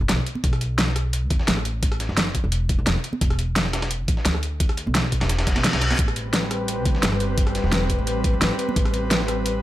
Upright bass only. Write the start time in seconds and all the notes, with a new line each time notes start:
0.01 F#1
0.09 B1
0.44 B1
1.31 E2
1.48 A1
2.09 F#1
2.44 E1
2.79 B1
2.87 E1
3.21 E1
4.08 A1
4.25 D2
4.87 B1
5.21 E1
5.56 B1
5.73 B1
5.99 A1
6.86 D2
7.03 G1
7.64 E1
7.99 A1
8.33 E1
8.41 A1
8.76 A1